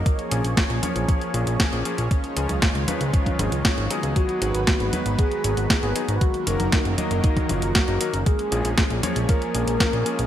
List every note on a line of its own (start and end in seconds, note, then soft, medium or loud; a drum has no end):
0.00 2.07 A#3 medium
0.06 2.09 F3 medium
0.06 4.12 C#4 medium
0.06 2.09 G#4 medium
0.06 4.12 C#5 medium
0.06 kick loud
0.06 closed hi-hat soft
0.19 closed hi-hat soft
0.31 0.42 A#1 loud
0.31 0.49 F3 medium
0.31 0.49 A#3 medium
0.31 0.49 C#4 medium
0.31 0.49 G#4 medium
0.31 closed hi-hat medium
0.45 0.55 A#1 medium
0.45 closed hi-hat soft
0.57 kick loud
0.57 snare loud
0.57 closed hi-hat soft
0.70 0.81 A#1 medium
0.70 closed hi-hat soft
0.83 1.31 F3 medium
0.83 1.31 A#3 medium
0.83 1.31 C#4 medium
0.83 1.31 C#5 medium
0.83 closed hi-hat medium
0.83 high conga medium
0.96 1.06 A#1 medium
0.96 closed hi-hat medium
1.09 kick loud
1.09 closed hi-hat medium
1.21 closed hi-hat soft
1.34 1.45 A#1 medium
1.34 1.69 F3 medium
1.34 1.69 A#3 medium
1.34 1.70 C#4 medium
1.34 1.69 G#4 medium
1.34 closed hi-hat medium
1.47 1.58 A#1 medium
1.47 closed hi-hat soft
1.60 kick loud
1.60 snare loud
1.60 closed hi-hat soft
1.72 1.83 A#1 medium
1.72 1.82 F3 medium
1.72 1.82 A#3 medium
1.72 1.82 C#4 medium
1.72 1.82 G#4 medium
1.72 closed hi-hat soft
1.85 2.03 F3 medium
1.85 2.03 A#3 medium
1.85 2.03 C#4 medium
1.85 2.03 G#4 loud
1.85 closed hi-hat medium
1.98 2.09 A#1 medium
1.98 closed hi-hat soft
2.11 6.17 D#3 medium
2.11 4.14 G#3 medium
2.11 4.14 F4 medium
2.11 kick loud
2.11 closed hi-hat soft
2.24 closed hi-hat soft
2.37 2.47 C#2 loud
2.37 2.54 F3 medium
2.37 2.54 C#4 medium
2.37 2.54 D#4 medium
2.37 2.54 G#4 medium
2.37 closed hi-hat medium
2.49 2.60 C#2 medium
2.49 closed hi-hat soft
2.49 high conga medium
2.62 kick loud
2.62 snare loud
2.62 closed hi-hat soft
2.75 2.86 C#2 medium
2.75 closed hi-hat soft
2.88 3.36 F3 medium
2.88 3.36 C#4 medium
2.88 3.36 D#4 medium
2.88 3.36 B4 medium
2.88 closed hi-hat medium
2.88 high conga medium
3.01 3.12 C#2 medium
3.01 closed hi-hat soft
3.14 kick loud
3.14 closed hi-hat soft
3.26 kick medium
3.26 closed hi-hat soft
3.26 high conga medium
3.39 3.50 G#1 medium
3.39 3.87 F3 medium
3.39 3.87 C#4 medium
3.39 3.87 D#4 medium
3.39 3.87 G#4 medium
3.39 closed hi-hat medium
3.39 high conga medium
3.52 3.63 C#2 medium
3.52 closed hi-hat soft
3.65 kick loud
3.65 snare loud
3.65 closed hi-hat soft
3.78 3.88 G#1 medium
3.78 closed hi-hat soft
3.90 4.39 F#3 loud
3.90 4.39 B3 medium
3.90 4.39 D#4 medium
3.90 4.39 G#4 loud
3.90 closed hi-hat medium
4.03 4.14 C#2 medium
4.03 closed hi-hat soft
4.16 6.19 G#3 medium
4.16 6.19 B3 medium
4.16 8.22 F#4 medium
4.16 4.89 F#4 loud
4.16 6.19 B4 medium
4.16 kick loud
4.16 closed hi-hat soft
4.29 closed hi-hat soft
4.42 4.52 G#1 loud
4.42 4.59 F#3 medium
4.42 4.59 B3 medium
4.42 4.59 D#4 medium
4.42 4.59 G#4 medium
4.42 closed hi-hat medium
4.54 4.65 G#1 medium
4.54 closed hi-hat soft
4.67 kick loud
4.67 snare loud
4.67 closed hi-hat soft
4.80 4.91 G#1 medium
4.80 closed hi-hat soft
4.93 5.41 F#3 medium
4.93 5.41 B3 medium
4.93 5.41 D#4 medium
4.93 5.41 B4 loud
4.93 closed hi-hat medium
4.93 high conga medium
5.06 5.17 G#1 medium
5.06 closed hi-hat soft
5.19 5.92 G#4 loud
5.19 kick loud
5.19 closed hi-hat medium
5.31 closed hi-hat soft
5.44 5.55 G#1 loud
5.44 5.80 F#3 medium
5.44 5.80 B3 medium
5.44 5.80 D#4 medium
5.44 5.80 G#4 medium
5.44 closed hi-hat medium
5.57 5.68 G#1 medium
5.57 closed hi-hat soft
5.70 kick loud
5.70 snare loud
5.70 closed hi-hat soft
5.83 5.93 G#1 medium
5.83 5.92 F#3 medium
5.83 5.92 B3 medium
5.83 5.92 D#4 medium
5.83 5.92 G#4 medium
5.83 closed hi-hat soft
5.96 6.13 F#3 medium
5.96 6.13 B3 medium
5.96 6.13 D#4 medium
5.96 6.13 G#4 loud
5.96 closed hi-hat medium
6.08 6.19 G#1 medium
6.08 closed hi-hat medium
6.21 8.25 D#3 medium
6.21 8.25 F#3 medium
6.21 8.24 A#3 medium
6.21 6.45 F#4 loud
6.21 8.25 A#4 medium
6.21 kick loud
6.21 closed hi-hat medium
6.34 closed hi-hat soft
6.47 6.58 F#1 medium
6.47 6.64 F#3 medium
6.47 6.64 A#3 medium
6.47 6.95 D#4 loud
6.47 6.64 D#4 medium
6.47 6.64 A#4 medium
6.47 closed hi-hat medium
6.60 6.70 F#1 medium
6.60 closed hi-hat medium
6.60 high conga medium
6.72 kick loud
6.72 snare loud
6.72 closed hi-hat medium
6.85 6.96 F#1 medium
6.85 closed hi-hat soft
6.98 7.46 F#3 medium
6.98 7.46 A#3 medium
6.98 7.46 D#4 medium
6.98 7.46 D#5 medium
6.98 closed hi-hat medium
6.98 high conga medium
7.11 7.22 F#1 medium
7.11 closed hi-hat soft
7.24 7.51 D#4 medium
7.24 kick loud
7.24 closed hi-hat medium
7.37 kick medium
7.37 closed hi-hat soft
7.37 high conga medium
7.49 7.60 F#1 medium
7.49 7.85 F#3 medium
7.49 7.85 A#3 medium
7.49 7.85 D#4 medium
7.49 7.75 F4 medium
7.49 7.85 A#4 medium
7.49 closed hi-hat medium
7.49 high conga medium
7.62 7.73 F#1 medium
7.62 closed hi-hat medium
7.75 8.11 F#4 loud
7.75 kick loud
7.75 snare loud
7.75 closed hi-hat medium
7.88 7.99 F#1 medium
7.88 7.98 F#3 medium
7.88 7.98 A#3 medium
7.88 7.98 D#4 medium
7.88 7.98 A#4 medium
7.88 closed hi-hat soft
8.00 8.18 F#3 medium
8.00 8.18 A#3 medium
8.00 8.18 D#4 medium
8.00 8.18 A#4 loud
8.00 closed hi-hat medium
8.14 8.24 F#1 medium
8.14 closed hi-hat soft
8.26 10.27 F3 medium
8.26 10.27 G#3 medium
8.26 10.27 A#3 medium
8.26 10.27 C#4 medium
8.26 10.27 G#4 medium
8.26 8.99 G#4 loud
8.26 kick loud
8.26 closed hi-hat medium
8.39 closed hi-hat soft
8.52 8.63 A#1 loud
8.52 8.69 F3 medium
8.52 8.69 A#3 medium
8.52 8.69 C#4 medium
8.52 8.69 G#4 medium
8.52 closed hi-hat loud
8.65 8.76 A#1 medium
8.65 closed hi-hat medium
8.78 kick loud
8.78 snare loud
8.78 closed hi-hat medium
8.90 9.01 A#1 medium
8.90 closed hi-hat soft
9.03 9.52 F3 medium
9.03 9.52 A#3 medium
9.03 9.52 C#4 medium
9.03 9.51 C#5 medium
9.03 closed hi-hat medium
9.03 high conga medium
9.16 9.27 A#1 medium
9.16 closed hi-hat medium
9.29 10.27 A#4 loud
9.29 kick loud
9.29 closed hi-hat medium
9.42 closed hi-hat soft
9.54 9.65 A#1 loud
9.54 9.90 F3 medium
9.54 9.90 A#3 medium
9.54 9.90 C#4 medium
9.54 9.90 G#4 medium
9.54 closed hi-hat medium
9.67 9.78 A#1 medium
9.67 closed hi-hat medium
9.80 kick loud
9.80 snare loud
9.80 closed hi-hat medium
9.93 10.04 A#1 medium
9.93 10.03 F3 medium
9.93 10.03 A#3 medium
9.93 10.03 C#4 medium
9.93 10.03 G#4 medium
9.93 closed hi-hat soft
10.06 10.23 F3 medium
10.06 10.23 A#3 medium
10.06 10.23 C#4 medium
10.06 10.23 G#4 loud
10.06 closed hi-hat medium
10.19 10.27 A#1 medium
10.19 closed hi-hat medium